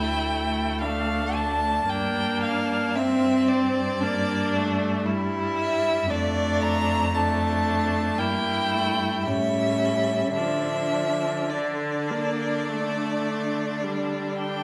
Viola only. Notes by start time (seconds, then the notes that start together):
Already playing: A3
1.91 A#3
2.98 C4
4.03 A#3
4.54 A3
5.07 G3
6.12 A3
7.16 A3
8.19 A#3
8.74 A3
9.27 G3
10.37 F3
11.54 D3
12.11 A#3
12.69 A3
13.83 G3